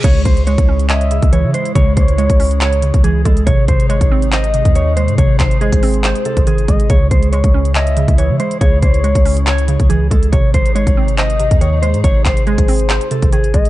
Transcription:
0.04 C#2 C#3 G#3 E4 G#4 C#5, kick, closed hi-hat, crash
0.25 C#2 C5, kick, closed hi-hat
0.37 closed hi-hat
0.47 G#3 C#5, closed hi-hat
0.58 C#2, kick, closed hi-hat
0.69 C#4
0.80 closed hi-hat
0.90 C#5 D#5 E5, clap, closed hi-hat
1.01 closed hi-hat
1.11 C#3, closed hi-hat
1.22 C#2, kick, closed hi-hat
1.33 E3 C#5, closed hi-hat
1.44 C#3
1.54 G#3 C5, closed hi-hat
1.65 closed hi-hat
1.75 C#2 C#3 C#5, kick, closed hi-hat
1.96 C#2 C5 C#5, kick, closed hi-hat
2.08 closed hi-hat
2.18 G#3 C#5, closed hi-hat
2.30 C#2, kick, closed hi-hat
2.40 C#4, open hi-hat
2.51 closed hi-hat
2.61 C#5, clap, closed hi-hat
2.73 closed hi-hat
2.82 C#3, closed hi-hat
2.94 C#2, kick, closed hi-hat
3.04 E3 G#4, closed hi-hat
3.25 C#2 G#3 A4, kick, closed hi-hat
3.37 closed hi-hat
3.47 G#1 C3 G#3 D#4 C#5, kick, closed hi-hat
3.68 G#1 C5, kick, closed hi-hat
3.80 closed hi-hat
3.89 G#3 C#5, closed hi-hat
4.01 G#1, kick, closed hi-hat
4.11 C4
4.22 closed hi-hat
4.32 C5 D#5, clap, closed hi-hat
4.44 closed hi-hat
4.54 C3, closed hi-hat
4.65 D#2, kick, closed hi-hat
4.75 D#3 C#5, closed hi-hat
4.96 G#3 C5, closed hi-hat
5.08 G#2, closed hi-hat
5.18 G#1 C3 C#5, kick, closed hi-hat
5.40 G#1 C5, kick, clap, closed hi-hat
5.51 closed hi-hat
5.61 G#3 G#4, closed hi-hat
5.72 G#1, kick, closed hi-hat
5.83 C4, open hi-hat
5.94 closed hi-hat
6.04 C5, clap, closed hi-hat
6.15 closed hi-hat
6.25 C3 A4, closed hi-hat
6.37 G#1, kick, closed hi-hat
6.47 D#3 G#4, closed hi-hat
6.58 closed hi-hat
6.68 G#1 G#3 D#5, kick, closed hi-hat
6.80 closed hi-hat
6.90 C#2 C#3 E4 C#5, kick, closed hi-hat
7.11 C#2 C5, kick, closed hi-hat
7.23 closed hi-hat
7.32 G#3 C#5, closed hi-hat
7.44 C#2, kick, closed hi-hat
7.54 C#4
7.65 closed hi-hat
7.75 C#5 D#5 E5, clap, closed hi-hat
7.87 closed hi-hat
7.97 C#3, closed hi-hat
8.08 C#2, kick, closed hi-hat
8.18 E3 C#5, closed hi-hat
8.30 C#3
8.40 G#3 C5, closed hi-hat
8.51 closed hi-hat
8.61 C#2 C#3 C#5, kick, closed hi-hat
8.82 C#2 C5 C#5, kick, closed hi-hat
8.94 closed hi-hat
9.04 G#3 C#5, closed hi-hat
9.15 C#2, kick, closed hi-hat
9.25 C#4, open hi-hat
9.37 closed hi-hat
9.47 C#5, clap, closed hi-hat
9.58 closed hi-hat
9.68 C#3, closed hi-hat
9.80 C#2, kick, closed hi-hat
9.89 E3 G#4, closed hi-hat
10.11 C#2 G#3 A4, kick, closed hi-hat
10.23 closed hi-hat
10.32 G#1 C3 D#4 G#4 C#5, kick, closed hi-hat
10.54 G#1 C5, kick, closed hi-hat
10.66 closed hi-hat
10.75 G#3 C#5, closed hi-hat
10.87 G#1, kick, closed hi-hat
10.97 C4
11.08 closed hi-hat
11.18 C5 D#5, clap, closed hi-hat
11.30 closed hi-hat
11.40 C3, closed hi-hat
11.51 D#2, kick, closed hi-hat
11.61 D#3 C#5, closed hi-hat
11.82 G#3 C5, closed hi-hat
11.94 G#2, closed hi-hat
12.04 G#1 C3 C#5, kick, closed hi-hat
12.25 G#1 C5, kick, clap, closed hi-hat
12.37 closed hi-hat
12.47 G#3 G#4, closed hi-hat
12.58 G#1, kick, closed hi-hat
12.68 C4, open hi-hat
12.80 closed hi-hat
12.90 C5, clap, closed hi-hat
13.01 closed hi-hat
13.11 C3 A4, closed hi-hat
13.22 G#1, kick, closed hi-hat
13.32 D#3 G#4, closed hi-hat
13.44 closed hi-hat
13.54 G#1 G#3 D#5, kick, closed hi-hat
13.65 closed hi-hat

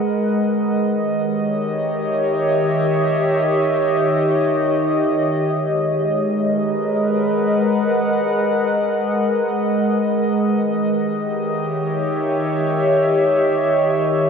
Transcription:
Already playing: G#3 A#4 B4 D#5 F#5
0.63 D#3
1.11 G4 C#5
1.71 E5
5.58 G#3
5.91 A#4
6.23 B4
6.78 F#5
10.50 D#3
10.76 G4
11.22 C#5
11.32 E5

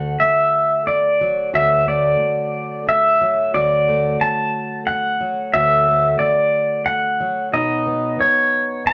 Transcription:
Already playing: D2 A3 F#4 F#5
0.20 E5, muted steel-string acoustic guitar stroke
0.87 D5, muted steel-string acoustic guitar stroke
1.21 F#3
1.53 D2 F#4 E5
1.87 A3 D5
2.20 muted steel-string acoustic guitar stroke
2.87 E5, muted steel-string acoustic guitar stroke
3.21 F#3
3.54 D2 F#4 D5
3.89 A3
4.20 A5, muted steel-string acoustic guitar stroke
4.87 F#5, muted steel-string acoustic guitar stroke
5.21 F#3
5.54 D2 F#4 E5
5.88 A3
6.19 D5, muted steel-string acoustic guitar stroke
6.86 F#5, muted steel-string acoustic guitar stroke
7.20 F#3
7.53 B2 D#4 D#5
7.87 B3
8.19 C#5, muted steel-string acoustic guitar stroke
8.85 B5, muted steel-string acoustic guitar stroke

